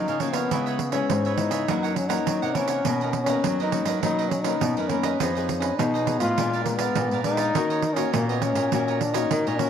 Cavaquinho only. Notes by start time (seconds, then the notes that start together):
0.08 A#4 C#5 F5
0.19 F#4 A#4 C#5 F5
0.33 A#4 C#5 F5
0.51 E4 B4 C#5 E5
0.66 B4 C#5 E5
0.79 muted cavaquinho stroke
0.93 B4 C#5 E5
1.26 B4 C#5 E5
1.52 B4 C#5 E5
1.68 E4 A#4 C#5 F#5
1.83 A#4 C#5 F#5
1.95 muted cavaquinho stroke
2.09 A#4 C#5 F#5
2.42 A#4 C#5 F#5
2.54 E4 A#4 C#5 F#5
2.69 A#4 C#5 F#5
2.85 D#4 A#4 B4 D#5
3.02 A#4 B4 D#5
3.14 muted cavaquinho stroke
3.28 A#4 B4 D#5
3.60 A#4 B4 D#5
3.86 A#4 B4 D#5
4.03 D#4 A#4 B4 D#5
4.19 A#4 B4 D#5
4.31 muted cavaquinho stroke
4.44 A#4 B4 D#5
4.77 A#4 B4 D#5
4.89 D#4 A#4 B4 D#5
5.03 A#4 B4 D#5
5.20 F4 G#4 B4 D#5
5.35 G#4 B4 D#5
5.48 muted cavaquinho stroke
5.60 G#4 B4 D#5
5.94 G#4 B4 D#5
6.20 G#4 B4 D#5
6.38 G#4 A#4 D5 F5
6.53 A#4 D5 F5
6.66 muted cavaquinho stroke
6.79 A#4 D5 F5
7.12 A#4 D5 F5
7.25 G#4 A#4 D5 F5
7.38 A#4 D5 F5
7.55 F#4 A#4 C#5 D#5
7.70 A#4 C#5 D#5
7.83 muted cavaquinho stroke
7.96 A#4 C#5 D#5
8.30 A#4 C#5 D#5
8.56 A#4 C#5 D#5
8.73 F#4 A#4 C#5 D#5
8.88 A#4 C#5 D#5
9.01 muted cavaquinho stroke
9.14 A#4 C#5 D#5
9.47 A#4 C#5 D#5
9.59 F#4 A#4 C#5 D#5